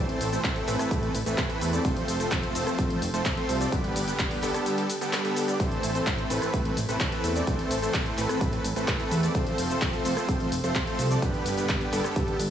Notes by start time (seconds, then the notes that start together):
Already playing: A1 E3 A3 C4 A4 C5
0.09 closed hi-hat
0.21 A1, open hi-hat, shaker
0.32 E3 A3 C4 A4 C5, closed hi-hat, shaker
0.44 A1, kick, clap, closed hi-hat, shaker
0.56 closed hi-hat
0.68 A1 E3 A3 C4 A4 B4, clap, open hi-hat, shaker
0.79 cross-stick, closed hi-hat, shaker
0.91 A2, kick, closed hi-hat, shaker
1.03 closed hi-hat
1.14 A1, open hi-hat, shaker
1.26 A1 E3 A3 C4 A4 B4, closed hi-hat, shaker
1.38 A2, kick, cross-stick, clap, closed hi-hat, shaker
1.50 E3 A3 C4 A4 B4, closed hi-hat
1.61 E2, open hi-hat, shaker
1.73 E3 A3 C4 A4 D5, closed hi-hat, shaker
1.85 F1 F3 C4 C5, kick, closed hi-hat, shaker
1.97 closed hi-hat
2.08 F1, open hi-hat, shaker
2.20 F3 A3 C4 A4 C5, closed hi-hat, shaker
2.32 F1, kick, clap, closed hi-hat, shaker
2.43 closed hi-hat
2.55 F1 F3 A3 C4 A4 C5, open hi-hat, shaker
2.67 cross-stick, closed hi-hat, shaker
2.79 F2, kick, closed hi-hat, shaker
2.90 closed hi-hat
3.02 F1, open hi-hat, shaker
3.14 F1 F3 A3 C4 A4 C5, closed hi-hat, shaker
3.25 F2, kick, clap, closed hi-hat, shaker
3.37 F3 A3 C4 A4 C5, closed hi-hat
3.49 C2, open hi-hat, shaker
3.61 F3 A3 C4 A4 D5, closed hi-hat, shaker
3.72 G1 D3 G3 B3 G4 B4, kick, closed hi-hat, shaker
3.84 closed hi-hat
3.96 G1, open hi-hat, shaker
4.08 D3 G3 B3 G4 B4, closed hi-hat, shaker
4.19 G1, kick, clap, closed hi-hat, shaker
4.31 open hi-hat
4.43 G1 D3 G3 B3 G4 A4, clap, open hi-hat, shaker
4.54 cross-stick, closed hi-hat, shaker
4.66 closed hi-hat, shaker
4.78 closed hi-hat
4.90 open hi-hat, shaker
5.01 D3 G3 B3 G4 A4, closed hi-hat, shaker
5.13 cross-stick, clap, closed hi-hat, shaker
5.25 D3 G3 B3 G4 A4, closed hi-hat
5.36 open hi-hat, shaker
5.48 D3 G3 B3 G4 D5, closed hi-hat, shaker
5.60 A1 E3 A3 C4 A4 C5, kick, closed hi-hat, shaker
5.72 closed hi-hat
5.83 A1, open hi-hat, shaker
5.95 E3 A3 C4 A4 C5, closed hi-hat, shaker
6.07 A1, kick, clap, closed hi-hat, shaker
6.18 closed hi-hat
6.30 A1 E3 A3 C4 A4 B4, open hi-hat, shaker
6.42 cross-stick, closed hi-hat, shaker
6.54 A2, kick, closed hi-hat, shaker
6.65 closed hi-hat
6.77 A1, open hi-hat, shaker
6.89 A1 E3 A3 C4 A4 B4, closed hi-hat, shaker
7.00 A2, kick, clap, closed hi-hat, shaker
7.12 E3 A3 C4 A4 B4, closed hi-hat
7.24 E2, open hi-hat, shaker
7.36 E3 A3 C4 A4 D5, closed hi-hat, shaker
7.47 A1 A3 C4 A4, kick, closed hi-hat, shaker
7.59 closed hi-hat
7.71 A1, open hi-hat, shaker
7.82 E3 A3 C4 A4 C5, closed hi-hat, shaker
7.94 A1, kick, clap, closed hi-hat, shaker
8.06 closed hi-hat
8.18 A1 E3 A3 C4 A4 B4, clap, open hi-hat, shaker
8.29 cross-stick, closed hi-hat, shaker
8.41 A2, kick, closed hi-hat, shaker
8.53 closed hi-hat
8.64 A1, open hi-hat, shaker
8.76 A1 E3 A3 C4 A4 B4, closed hi-hat, shaker
8.88 A2, kick, cross-stick, clap, closed hi-hat, shaker
9.00 E3 A3 C4 A4 B4, closed hi-hat
9.11 E2, open hi-hat, shaker
9.23 E3 A3 C4 A4 D5, closed hi-hat, shaker
9.35 F1 F3 A3 C4 A4 C5, kick, closed hi-hat, shaker
9.47 closed hi-hat
9.58 F1, open hi-hat, shaker
9.70 F3 A3 C4 A4 C5, closed hi-hat, shaker
9.82 F1, kick, clap, closed hi-hat, shaker
9.93 closed hi-hat
10.05 F1 F3 A3 C4 A4 C5, open hi-hat, shaker
10.17 cross-stick, closed hi-hat, shaker
10.28 F2, kick, closed hi-hat, shaker
10.40 closed hi-hat
10.52 F1, open hi-hat, shaker
10.64 F1 F3 A3 C4 A4 C5, closed hi-hat, shaker
10.75 F2, kick, clap, closed hi-hat, shaker
10.87 F3 A3 C4 A4 C5, closed hi-hat
10.99 C2, open hi-hat, shaker
11.11 F3 A3 C4 A4 D5, closed hi-hat, shaker
11.22 G1 D3 G3 B3 G4 B4, kick, closed hi-hat, shaker
11.34 closed hi-hat
11.46 G1, open hi-hat, shaker
11.57 D3 G3 B3 G4 B4, closed hi-hat, shaker
11.69 G1, kick, clap, closed hi-hat, shaker
11.81 closed hi-hat
11.93 G1 D3 G3 B3 G4 A4, clap, open hi-hat, shaker
12.04 cross-stick, closed hi-hat, shaker
12.16 G2, kick, closed hi-hat, shaker
12.28 closed hi-hat
12.39 G1, open hi-hat, shaker